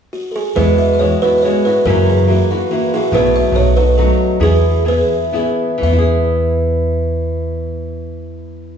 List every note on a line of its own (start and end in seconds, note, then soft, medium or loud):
0.13 0.31 F#4 medium
0.31 0.37 A4 soft
0.36 0.55 G#4 medium
0.55 1.13 E2 medium
0.55 1.05 E3 medium
0.55 0.99 G#3 medium
0.55 1.00 B3 medium
0.55 1.01 E4 medium
0.55 1.01 F#4 medium
0.55 0.80 B4 medium
0.78 0.93 E5 medium
0.94 0.99 D#5 medium
0.99 1.23 G#3 soft
0.99 1.23 B3 soft
0.99 1.23 E4 soft
0.99 1.21 F#4 medium
0.99 1.23 C#5 medium
1.22 1.43 B3 soft
1.22 1.44 E4 soft
1.22 1.43 F#4 soft
1.22 1.38 B4 medium
1.38 1.43 D#5 medium
1.42 1.66 G#3 medium
1.42 1.66 B3 soft
1.42 1.66 E4 medium
1.42 1.65 F#4 medium
1.42 1.66 C#5 medium
1.65 1.86 B3 soft
1.65 1.85 E4 soft
1.65 1.85 F#4 soft
1.65 1.86 B4 medium
1.85 2.40 F#2 medium
1.85 2.28 F#2 medium
1.85 2.28 C#3 medium
1.85 2.26 E3 medium
1.85 2.26 A#3 medium
1.85 2.27 E4 medium
1.85 2.28 F#4 medium
1.85 2.09 A#4 medium
2.10 2.29 G#4 medium
2.27 2.50 E3 soft
2.27 2.50 A#3 soft
2.27 2.50 E4 medium
2.27 2.50 F#4 soft
2.27 2.70 F#4 medium
2.51 2.70 E3 soft
2.51 2.70 A#3 soft
2.51 2.71 E4 soft
2.51 2.70 F#4 soft
2.71 2.93 E3 medium
2.71 2.93 A#3 soft
2.71 2.93 E4 medium
2.71 2.94 F#4 medium
2.71 2.92 F#4 medium
2.94 3.13 E3 soft
2.94 3.13 A#3 soft
2.94 3.12 E4 soft
2.94 3.13 F#4 soft
2.94 3.13 G#4 medium
3.12 3.39 B1 medium
3.12 3.54 B2 medium
3.12 3.52 F#3 medium
3.12 3.53 A3 medium
3.12 3.54 E4 medium
3.12 3.55 F#4 medium
3.12 3.36 B4 medium
3.36 3.55 E5 medium
3.52 4.09 B1 medium
3.52 3.76 F#3 soft
3.52 3.77 A3 soft
3.52 3.76 D#4 soft
3.52 3.76 F#4 medium
3.52 3.78 C#5 medium
3.76 3.97 A3 soft
3.76 3.97 D#4 soft
3.76 3.97 F#4 soft
3.76 3.87 B4 medium
3.88 3.96 B4 soft
3.97 4.40 F#3 medium
3.97 4.40 A3 medium
3.97 4.40 D#4 medium
3.97 4.40 F#4 medium
3.97 4.42 A4 medium
4.40 5.00 E2 medium
4.40 4.84 E3 medium
4.40 4.85 B3 medium
4.40 4.85 E4 medium
4.40 4.85 G#4 medium
4.40 4.88 G#4 medium
4.84 5.32 E3 soft
4.84 5.32 B3 medium
4.84 5.33 E4 soft
4.84 5.34 G#4 soft
4.88 5.31 B4 medium
5.33 5.77 E3 soft
5.33 5.86 B3 medium
5.33 5.92 E4 medium
5.33 5.98 G#4 medium
5.33 5.69 E5 medium
5.78 8.78 E3 medium
5.82 8.78 E2 medium
5.82 8.78 E5 medium
5.86 8.78 B3 medium
5.93 8.78 E4 medium
5.98 8.78 G#4 medium